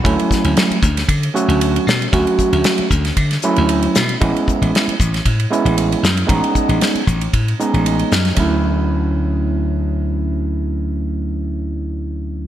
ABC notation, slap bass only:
X:1
M:4/4
L:1/16
Q:"Swing 16ths" 1/4=115
K:Dlyd
V:1 name="Slap bass" clef=bass
D,, z2 D,, z2 D,,2 D,2 z D,,3 B,,2 | D,, z2 D,, z2 D,,2 D,2 z D,,3 B,,2 | A,,, z2 A,,, z2 A,,,2 A,,2 z A,,,3 F,,2 | A,,, z2 A,,, z2 A,,,2 A,,2 z A,,,3 F,,2 |
D,,16- | D,,16 |]